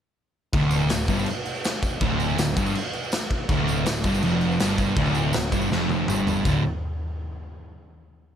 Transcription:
0.53 0.88 D1 medium
0.53 0.90 D2 loud
0.53 kick loud
0.53 tambourine soft
0.53 crash medium
0.71 tambourine medium
0.71 crash medium
0.81 tambourine soft
0.89 1.08 D1 medium
0.89 1.05 D2 medium
0.89 snare loud
0.89 tambourine loud
0.89 crash medium
1.08 1.26 G1 loud
1.08 1.27 G2 loud
1.08 kick medium
1.08 tambourine medium
1.08 crash medium
1.19 tambourine medium
1.26 crash medium
1.45 tambourine soft
1.45 crash medium
1.56 tambourine soft
1.64 snare loud
1.64 tambourine loud
1.64 crash medium
1.83 kick medium
1.83 tambourine medium
1.83 crash medium
2.01 2.36 D1 loud
2.01 2.38 D2 loud
2.01 kick loud
2.01 tambourine soft
2.01 crash medium
2.20 tambourine medium
2.20 crash medium
2.30 tambourine soft
2.38 2.55 D1 medium
2.38 2.53 D2 medium
2.38 snare loud
2.38 tambourine loud
2.38 crash medium
2.57 2.74 G1 loud
2.57 2.75 G2 loud
2.57 kick medium
2.57 tambourine medium
2.57 crash medium
2.66 tambourine medium
2.75 crash medium
2.93 tambourine soft
2.93 crash medium
3.04 tambourine soft
3.12 snare loud
3.12 tambourine loud
3.12 crash medium
3.31 kick medium
3.31 crash medium
3.49 3.84 D1 loud
3.49 3.86 D2 loud
3.49 kick loud
3.49 tambourine soft
3.49 crash medium
3.68 tambourine medium
3.68 crash medium
3.78 tambourine soft
3.86 4.04 D1 medium
3.86 4.02 D2 medium
3.86 snare loud
3.86 tambourine loud
3.86 crash medium
4.04 4.22 G1 loud
4.04 4.23 G2 loud
4.04 kick medium
4.04 tambourine medium
4.04 crash medium
4.14 tambourine medium
4.22 4.58 F1 loud
4.22 4.60 F2 loud
4.22 crash medium
4.41 tambourine soft
4.41 crash medium
4.51 tambourine soft
4.59 4.95 G1 medium
4.59 4.97 G2 loud
4.59 snare loud
4.59 tambourine medium
4.59 crash medium
4.78 kick medium
4.78 tambourine medium
4.78 crash medium
4.96 5.32 D1 medium
4.96 5.33 D2 loud
4.96 kick loud
4.96 crash medium
5.06 tambourine soft
5.15 tambourine medium
5.15 crash medium
5.33 5.52 D1 medium
5.33 5.50 D2 medium
5.33 snare loud
5.33 tambourine loud
5.33 crash medium
5.43 tambourine soft
5.52 5.70 G1 loud
5.52 5.71 G2 loud
5.52 kick medium
5.52 tambourine medium
5.52 crash medium
5.62 tambourine medium
5.71 6.06 F1 medium
5.71 6.08 F2 loud
5.71 snare medium
5.89 high tom medium
5.89 tambourine soft
6.08 6.43 G1 loud
6.08 6.45 G2 loud
6.08 mid tom medium
6.08 tambourine loud
6.27 floor tom loud
6.27 tambourine medium
6.37 tambourine soft
6.45 6.63 D1 medium
6.45 6.61 D2 loud
6.45 6.61 A2 loud
6.45 6.61 D3 loud
6.45 kick loud
6.45 floor tom loud
6.45 tambourine medium
6.45 crash medium

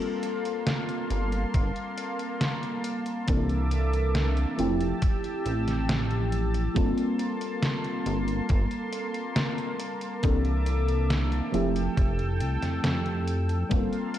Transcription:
0.00 3.19 G3 medium
0.00 3.19 A#3 medium
0.00 4.54 A#3 medium
0.00 3.19 C4 medium
0.00 3.20 F4 medium
0.00 3.20 A4 medium
0.00 3.25 F5 medium
0.00 11.50 A5 medium
0.00 3.24 C6 medium
0.00 closed hi-hat soft
0.23 closed hi-hat medium
0.45 closed hi-hat medium
0.67 snare loud
0.67 closed hi-hat medium
0.89 closed hi-hat soft
1.10 1.45 G1 medium
1.10 closed hi-hat medium
1.32 closed hi-hat medium
1.54 1.72 G1 medium
1.54 kick loud
1.54 closed hi-hat medium
1.76 closed hi-hat soft
1.98 closed hi-hat medium
2.19 closed hi-hat medium
2.41 snare loud
2.41 closed hi-hat medium
2.63 closed hi-hat soft
2.84 closed hi-hat medium
3.06 closed hi-hat medium
3.27 4.46 C2 medium
3.27 4.49 E3 medium
3.27 4.50 A#3 medium
3.27 4.50 C4 medium
3.27 4.50 D4 medium
3.27 4.51 A4 medium
3.27 4.57 E5 medium
3.27 4.57 D6 medium
3.27 kick loud
3.27 closed hi-hat medium
3.49 closed hi-hat soft
3.71 closed hi-hat medium
3.93 closed hi-hat medium
4.15 snare loud
4.15 closed hi-hat medium
4.37 closed hi-hat soft
4.57 4.93 F1 medium
4.57 6.67 F3 medium
4.57 6.67 A3 medium
4.57 6.67 C4 medium
4.57 6.68 E4 medium
4.57 6.73 G4 medium
4.57 6.68 G4 loud
4.57 6.73 E6 medium
4.57 closed hi-hat medium
4.81 closed hi-hat medium
5.02 kick loud
5.02 closed hi-hat medium
5.24 closed hi-hat soft
5.46 6.69 A1 loud
5.46 closed hi-hat medium
5.68 snare soft
5.68 closed hi-hat medium
5.89 snare loud
5.89 closed hi-hat medium
6.11 closed hi-hat soft
6.32 closed hi-hat medium
6.54 closed hi-hat medium
6.74 6.93 G1 loud
6.74 10.14 G3 medium
6.74 11.50 A#3 medium
6.74 10.15 A#3 medium
6.74 10.15 C4 medium
6.74 10.15 F4 medium
6.74 10.16 A4 medium
6.74 10.20 C6 medium
6.74 kick loud
6.74 closed hi-hat medium
6.98 closed hi-hat soft
7.19 closed hi-hat medium
7.41 closed hi-hat medium
7.62 snare loud
7.62 closed hi-hat medium
7.84 closed hi-hat soft
8.06 8.41 G1 medium
8.06 closed hi-hat medium
8.28 closed hi-hat medium
8.49 8.67 G1 medium
8.49 kick loud
8.49 closed hi-hat medium
8.71 closed hi-hat soft
8.93 closed hi-hat medium
9.14 closed hi-hat medium
9.36 snare loud
9.36 closed hi-hat medium
9.58 closed hi-hat soft
9.79 closed hi-hat medium
10.01 closed hi-hat medium
10.22 11.41 C2 medium
10.22 11.45 E3 medium
10.22 11.45 A#3 medium
10.22 11.45 C4 medium
10.22 11.46 D4 medium
10.22 11.46 A4 medium
10.22 11.53 E5 medium
10.22 11.53 D6 medium
10.22 kick loud
10.22 closed hi-hat medium
10.45 closed hi-hat soft
10.66 closed hi-hat medium
10.88 closed hi-hat medium
11.10 snare loud
11.10 closed hi-hat medium
11.32 closed hi-hat soft
11.52 11.89 F1 medium
11.52 13.62 F3 medium
11.52 13.62 A3 medium
11.52 13.62 C4 medium
11.52 13.63 E4 medium
11.52 13.63 G4 loud
11.52 13.69 A4 medium
11.52 13.69 G5 medium
11.52 13.69 E6 medium
11.52 closed hi-hat medium
11.76 closed hi-hat medium
11.97 12.42 F1 loud
11.97 kick loud
11.97 closed hi-hat medium
12.19 closed hi-hat soft
12.40 12.58 C2 medium
12.40 closed hi-hat medium
12.63 12.80 F2 soft
12.63 snare soft
12.63 closed hi-hat soft
12.84 13.64 F2 medium
12.84 snare loud
12.84 closed hi-hat medium
13.06 closed hi-hat soft
13.28 closed hi-hat medium
13.49 closed hi-hat medium
13.69 13.89 G1 loud
13.69 14.19 G3 medium
13.69 14.19 A#3 medium
13.69 14.19 C4 medium
13.69 14.19 F4 medium
13.69 14.19 A4 medium
13.69 14.19 F5 medium
13.69 14.19 A5 medium
13.69 14.19 C6 medium
13.69 kick loud
13.69 closed hi-hat medium
13.93 closed hi-hat soft
14.14 closed hi-hat medium

